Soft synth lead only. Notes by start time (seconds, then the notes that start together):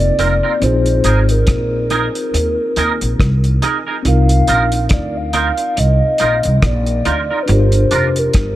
Already playing: D5
0.63 C5
1.31 A#4
4.08 F5
4.93 D5
5.17 F5
5.79 D#5
6.66 D5
7.43 B4
7.51 C5
8.19 A#4